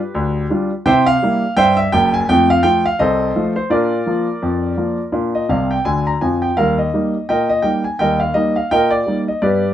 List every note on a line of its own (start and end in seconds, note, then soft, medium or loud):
0.00 0.45 G4 medium
0.00 0.24 B4 medium
0.15 0.44 D2 medium
0.50 0.69 G3 medium
0.50 0.70 D4 soft
0.50 0.70 F4 soft
0.86 1.15 C3 medium
0.86 1.06 E4 medium
0.86 1.05 C5 medium
0.86 1.05 E5 medium
0.86 1.06 G5 loud
1.06 1.54 F5 loud
1.23 1.41 G3 soft
1.23 1.42 A#3 medium
1.23 1.42 E4 medium
1.57 1.86 G2 medium
1.57 1.76 C5 medium
1.57 1.75 E5 medium
1.57 1.77 G5 loud
1.77 1.91 E5 medium
1.92 2.20 F#1 medium
1.92 2.21 F#2 medium
1.92 2.12 G5 loud
2.14 2.27 G#5 medium
2.29 2.58 F2 medium
2.29 2.49 A3 medium
2.29 2.49 G5 loud
2.50 2.63 F5 loud
2.63 2.83 F3 soft
2.63 2.83 A3 soft
2.63 2.84 F4 soft
2.63 2.83 G5 loud
2.86 2.99 F5 medium
2.99 3.29 C2 medium
2.99 3.52 A4 medium
2.99 3.52 C5 medium
2.99 3.44 D#5 medium
3.36 3.55 F3 soft
3.36 3.55 A3 soft
3.36 3.55 F4 soft
3.56 3.70 C5 medium
3.70 4.00 A#2 medium
3.70 3.91 D4 soft
3.70 4.06 F4 medium
3.70 5.30 A#4 medium
3.70 5.01 D5 medium
4.06 4.26 F3 soft
4.06 4.26 A#3 soft
4.06 4.27 F4 soft
4.42 4.72 F2 medium
4.77 4.97 F3 soft
4.77 4.97 A#3 soft
4.77 4.97 F4 soft
5.12 5.43 A#2 medium
5.12 5.33 D4 soft
5.35 5.49 D#5 medium
5.49 5.76 C2 medium
5.49 5.76 C3 medium
5.49 5.70 F5 medium
5.71 5.85 G5 medium
5.85 6.12 D2 medium
5.85 6.11 D3 medium
5.85 6.05 G#5 medium
6.07 6.21 A#5 medium
6.21 6.48 F2 medium
6.21 6.48 F3 soft
6.21 6.41 G#5 medium
6.42 6.56 G5 medium
6.57 6.87 D#2 medium
6.57 6.78 G3 soft
6.57 6.76 A#4 medium
6.57 6.77 F5 medium
6.79 7.26 D#5 medium
6.94 7.13 G3 soft
6.94 7.13 A#3 soft
6.94 7.14 D#4 soft
7.29 7.59 A#2 medium
7.29 7.48 A#4 medium
7.29 7.48 D#5 medium
7.29 7.49 G5 medium
7.49 7.63 D#5 medium
7.62 7.83 G3 soft
7.62 7.83 A#3 soft
7.62 7.83 D#4 soft
7.62 7.83 G5 medium
7.84 7.99 G#5 medium
7.99 8.29 D#2 medium
7.99 8.20 G3 soft
7.99 8.19 A#4 medium
7.99 8.19 D#5 medium
7.99 8.20 G5 medium
8.20 8.34 F5 medium
8.34 8.54 G3 soft
8.34 8.55 A#3 soft
8.34 8.55 D#4 soft
8.34 8.55 D#5 medium
8.56 8.70 F5 medium
8.71 9.01 A#2 medium
8.71 8.91 A#4 medium
8.71 8.91 D#5 medium
8.71 8.91 G5 medium
8.91 9.19 D5 medium
9.07 9.26 G3 soft
9.07 9.27 A#3 soft
9.07 9.27 D#4 soft
9.28 9.42 D#5 medium
9.42 9.72 G2 medium
9.42 9.63 B3 soft
9.42 9.74 G4 medium
9.42 9.74 B4 medium
9.42 9.74 D5 medium